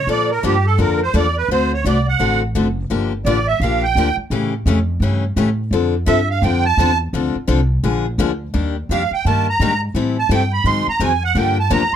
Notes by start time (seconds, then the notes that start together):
0.07 A#2 D3 F3 A#3 D4 A4 D5
0.30 A#4
0.43 G2 D3 F3 A#3 D4 G4 A4
0.66 A4
0.78 F2 D3 F3 A#3 D4 A4 A#4
1.03 C5
1.14 E2 D3 F3 A#3 D4 A4 D5
1.38 B4
1.48 D2 D3 A3 C4 F#4 A4 C5
1.74 C#5
1.84 C2 D3 A3 C4 F#4 A4 D5
2.09 F#5
2.19 A1 D3 A3 C4 F#4 A4
2.55 F#1 D3 A3 C4 F#4 A4
2.90 G1 D3 F3 A#3 D4 G4
3.25 A1 D3 F3 A#3 D4 G4 D5
3.47 E5
3.60 A#1 D3 F3 A#3 D4 F5
3.64 G4
3.83 G5
3.95 D2 D3 F3 A#3 D4 G4
4.17 muted upright bass stroke
4.30 A2 C#3 E3 A3 C#4 G4
4.66 F2 C#3 E3 A3 C#4 G4
5.00 G2 C#3 E3 A3 C#4 G4
5.36 A2 C#3 E3 A3 C#4 G4
5.71 F2 D3 F3 C4 D4 A4
6.06 G2 D3 F3 C4 D4 A4 E5
6.30 F5
6.42 F2 D3 F3 C4 D4 A4 G5
6.65 A5
6.77 E2 D3 F3 C4 D4 A4
7.13 D2 D3 F3 C4 D4 A4
7.35 muted upright bass stroke
7.48 C2 D3 F3 C4 D4 A4
7.83 A#1 D3 F3 A#3 D4 G#4
8.18 D2 D3 F3 A#3 D4 G#4
8.54 D#2 D#3 G3 A#3 D4 G4
8.89 F2 D#3 G3 A#3 D4 G4 F5
9.11 G5, muted upright bass stroke
9.25 G2 D#3 G3 A#3 D4 G4 A5
9.50 A#5
9.60 G#2 D#3 G3 A#3 D4 G4
9.94 A2 E3 G3 C4 E4 A4
10.19 A5
10.29 G2 E3 G3 C4 E4 A4 G5
10.53 B5
10.64 G#2 D#3 F#3 C4 D#4 G#4 C6
10.87 A#5, muted upright bass stroke
11.00 F2 D#3 F#3 C4 D#4 G#4 G#5
11.25 F#5
11.35 G2 D3 F3 A#3 D4 G4 G5
11.60 A5
11.70 E2 D3 F3 A#3 D4 G4 A#5
11.93 muted upright bass stroke